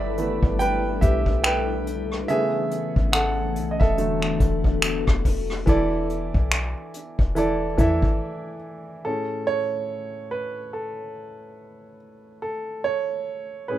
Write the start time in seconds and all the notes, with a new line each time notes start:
Already playing: G1 G3 D4 E4 G4 A4 B4 D5 E5 G5 B5
0.17 E3 A3 B3, closed hi-hat
0.43 G1, kick
0.59 B4 G5, closed hi-hat
1.01 B1 G4 E5, kick, closed hi-hat
1.26 kick
1.44 B4 G5, finger snap, closed hi-hat
1.87 closed hi-hat
2.12 cross-stick
2.28 C#3 E3 A3 B3 C#4 G#4 E5, closed hi-hat
2.71 closed hi-hat
2.96 G#1, kick
3.12 A4 F#5, finger snap, closed hi-hat
3.56 B1, closed hi-hat
3.71 D#5
3.80 E1 A4 E5, kick
3.98 D3 E3 F#3 A3 B3 D4 F#4 A4, closed hi-hat
4.22 finger snap
4.40 E1, kick, closed hi-hat
4.64 kick
4.82 finger snap, closed hi-hat
5.07 E1, kick, cross-stick
5.25 kick, open hi-hat
5.50 cross-stick
5.66 E1 E3 E4 A4 D5, kick, closed hi-hat
6.10 closed hi-hat
6.34 B1, kick
6.52 finger snap, closed hi-hat
6.94 closed hi-hat
7.19 E1, kick
7.35 E3 E4 A4 D5, closed hi-hat
7.78 E2 E3 E4 A4 E5, kick, closed hi-hat
8.02 G#1, kick
9.05 A2 C#4 G#4 A4
9.47 C#5
10.31 B4
10.73 A4
12.42 A4
12.84 C#5
13.68 A2 C#4 G#4 B4